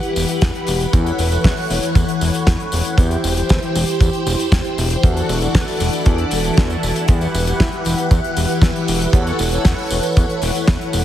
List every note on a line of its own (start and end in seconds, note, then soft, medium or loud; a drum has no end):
0.00 0.90 E3 loud
0.00 0.91 E3 medium
0.00 0.90 E4 medium
0.00 0.91 E4 medium
0.00 0.90 G4 medium
0.00 0.91 G4 medium
0.00 0.90 B4 medium
0.00 2.95 B4 medium
0.00 0.90 F#5 loud
0.00 2.94 F#5 medium
0.00 closed hi-hat soft
0.16 0.26 E1 medium
0.16 open hi-hat loud
0.16 tambourine medium
0.29 closed hi-hat medium
0.29 tambourine soft
0.41 0.51 E2 loud
0.41 kick loud
0.41 snare loud
0.41 closed hi-hat medium
0.41 tambourine soft
0.55 closed hi-hat soft
0.67 0.86 E1 medium
0.67 open hi-hat loud
0.67 tambourine medium
0.80 closed hi-hat medium
0.80 tambourine soft
0.93 1.12 E2 loud
0.93 1.29 E3 medium
0.93 2.96 E3 medium
0.93 11.05 E4 medium
0.93 1.29 E4 medium
0.93 1.29 A4 medium
0.93 2.96 C#5 medium
0.93 1.29 C#5 medium
0.93 1.29 F#5 loud
0.93 kick loud
0.93 closed hi-hat medium
0.93 tambourine soft
1.06 closed hi-hat soft
1.06 tambourine soft
1.18 1.38 E1 medium
1.18 open hi-hat loud
1.18 tambourine medium
1.32 2.95 E3 loud
1.32 2.95 E4 medium
1.32 2.96 A4 medium
1.32 2.96 C#5 medium
1.32 2.95 F#5 loud
1.32 closed hi-hat medium
1.32 tambourine soft
1.44 1.54 E2 loud
1.44 kick loud
1.44 snare loud
1.44 closed hi-hat medium
1.44 tambourine soft
1.57 open hi-hat medium
1.70 1.79 E1 medium
1.70 open hi-hat loud
1.70 tambourine medium
1.83 closed hi-hat medium
1.83 tambourine soft
1.95 2.05 E2 medium
1.95 kick loud
1.95 closed hi-hat medium
1.95 tambourine soft
2.09 closed hi-hat soft
2.21 2.31 E1 medium
2.21 open hi-hat loud
2.21 tambourine medium
2.34 closed hi-hat medium
2.34 tambourine soft
2.47 2.56 E2 loud
2.47 kick loud
2.47 snare loud
2.47 closed hi-hat medium
2.47 tambourine soft
2.60 closed hi-hat soft
2.72 2.82 E1 loud
2.72 open hi-hat loud
2.72 tambourine medium
2.85 closed hi-hat medium
2.85 tambourine soft
2.98 3.17 E2 loud
2.98 3.34 E3 medium
2.98 3.34 E4 medium
2.98 5.01 G4 medium
2.98 3.34 G4 medium
2.98 5.01 C5 medium
2.98 3.34 C5 medium
2.98 3.34 G5 loud
2.98 kick loud
2.98 closed hi-hat medium
2.98 tambourine soft
3.11 closed hi-hat soft
3.11 tambourine soft
3.24 3.43 E1 loud
3.24 open hi-hat loud
3.24 tambourine medium
3.37 5.00 E3 loud
3.37 5.00 E4 medium
3.37 5.01 G4 medium
3.37 5.01 C5 medium
3.37 5.01 G5 loud
3.37 closed hi-hat medium
3.37 tambourine soft
3.49 3.59 E2 loud
3.49 kick loud
3.49 snare loud
3.49 closed hi-hat medium
3.49 tambourine soft
3.62 closed hi-hat soft
3.75 3.85 E1 medium
3.75 open hi-hat loud
3.75 tambourine medium
3.88 closed hi-hat medium
3.88 tambourine soft
4.01 4.10 E2 medium
4.01 kick loud
4.01 closed hi-hat medium
4.01 tambourine soft
4.13 closed hi-hat soft
4.26 4.36 E1 loud
4.26 open hi-hat medium
4.26 tambourine medium
4.39 closed hi-hat medium
4.39 tambourine soft
4.52 4.61 E2 loud
4.52 kick loud
4.52 snare loud
4.52 closed hi-hat medium
4.64 closed hi-hat soft
4.78 4.96 E1 loud
4.78 open hi-hat loud
4.78 tambourine medium
4.90 closed hi-hat medium
4.90 tambourine soft
5.03 5.22 E2 loud
5.03 5.39 E3 medium
5.03 11.05 E3 medium
5.03 5.39 D4 medium
5.03 5.39 F#4 medium
5.03 5.39 A4 medium
5.03 7.07 A4 medium
5.03 7.07 D5 medium
5.03 5.39 F#5 loud
5.03 11.05 F#5 medium
5.03 kick loud
5.03 closed hi-hat medium
5.03 tambourine soft
5.17 closed hi-hat soft
5.17 tambourine soft
5.29 5.48 E1 loud
5.29 open hi-hat medium
5.29 tambourine medium
5.41 6.42 E3 loud
5.41 6.42 D4 medium
5.41 6.42 F#4 medium
5.41 6.42 A4 medium
5.41 6.42 F#5 loud
5.41 closed hi-hat medium
5.41 tambourine soft
5.55 5.64 E2 loud
5.55 kick loud
5.55 snare loud
5.55 closed hi-hat medium
5.55 tambourine soft
5.68 open hi-hat medium
5.68 tambourine soft
5.80 5.90 E1 medium
5.80 open hi-hat loud
5.80 tambourine medium
5.93 closed hi-hat medium
5.93 tambourine soft
6.05 6.25 E2 loud
6.05 kick loud
6.05 closed hi-hat medium
6.05 tambourine soft
6.18 closed hi-hat soft
6.31 6.50 E1 medium
6.31 open hi-hat loud
6.31 tambourine medium
6.44 7.06 E3 medium
6.44 7.06 D4 medium
6.44 7.06 F#4 medium
6.44 7.06 A4 medium
6.44 7.06 A5 loud
6.44 closed hi-hat medium
6.44 tambourine soft
6.57 6.76 E2 loud
6.57 kick loud
6.57 snare loud
6.57 closed hi-hat medium
6.57 tambourine soft
6.70 closed hi-hat soft
6.70 tambourine soft
6.83 6.92 E1 loud
6.83 open hi-hat loud
6.83 tambourine medium
6.95 closed hi-hat medium
6.95 tambourine soft
7.08 7.27 E2 loud
7.08 7.44 E3 medium
7.08 7.44 E4 medium
7.08 7.44 G4 medium
7.08 9.12 G4 medium
7.08 7.44 B4 medium
7.08 11.05 B4 medium
7.08 7.44 F#5 loud
7.08 kick loud
7.08 closed hi-hat medium
7.08 tambourine soft
7.21 closed hi-hat soft
7.21 tambourine soft
7.34 7.53 E1 medium
7.34 open hi-hat medium
7.34 tambourine medium
7.47 9.11 E3 loud
7.47 9.11 E4 loud
7.47 9.11 G4 medium
7.47 9.11 B4 medium
7.47 9.11 F#5 loud
7.47 closed hi-hat medium
7.47 tambourine soft
7.60 7.69 E2 loud
7.60 kick loud
7.60 snare loud
7.60 closed hi-hat medium
7.60 tambourine soft
7.72 closed hi-hat soft
7.85 7.95 E1 medium
7.85 open hi-hat loud
7.85 tambourine medium
7.98 closed hi-hat medium
7.98 tambourine soft
8.11 8.20 E2 medium
8.11 kick loud
8.11 closed hi-hat medium
8.11 tambourine soft
8.24 closed hi-hat soft
8.37 8.46 E1 loud
8.37 open hi-hat loud
8.37 tambourine medium
8.48 closed hi-hat medium
8.48 tambourine soft
8.62 8.71 E2 loud
8.62 kick loud
8.62 snare loud
8.62 closed hi-hat medium
8.62 tambourine soft
8.76 closed hi-hat soft
8.88 9.07 E1 medium
8.88 open hi-hat loud
8.88 tambourine medium
9.00 closed hi-hat medium
9.00 tambourine soft
9.13 9.32 E2 loud
9.13 9.49 E3 loud
9.13 9.49 E4 medium
9.13 9.49 A4 medium
9.13 9.49 C#5 medium
9.13 11.05 C#5 medium
9.13 9.49 F#5 loud
9.13 kick loud
9.13 closed hi-hat medium
9.13 tambourine soft
9.27 closed hi-hat soft
9.27 tambourine soft
9.39 9.58 E1 medium
9.39 open hi-hat loud
9.39 tambourine medium
9.52 11.05 E3 loud
9.52 11.05 E4 medium
9.52 11.05 A4 medium
9.52 11.05 C#5 medium
9.52 11.05 F#5 loud
9.52 closed hi-hat medium
9.52 tambourine soft
9.65 9.74 E2 loud
9.65 kick loud
9.65 snare loud
9.65 closed hi-hat medium
9.65 tambourine soft
9.78 open hi-hat medium
9.90 10.00 E1 medium
9.90 open hi-hat loud
9.90 tambourine medium
10.03 closed hi-hat medium
10.03 tambourine soft
10.17 10.26 E2 medium
10.17 kick loud
10.17 closed hi-hat medium
10.17 tambourine soft
10.30 closed hi-hat soft
10.42 10.51 E1 medium
10.42 open hi-hat loud
10.42 tambourine medium
10.55 closed hi-hat medium
10.55 tambourine soft
10.68 10.77 E2 loud
10.68 kick loud
10.68 snare loud
10.68 closed hi-hat medium
10.68 tambourine soft
10.81 closed hi-hat soft
10.93 11.03 E1 loud
10.93 open hi-hat loud
10.93 tambourine medium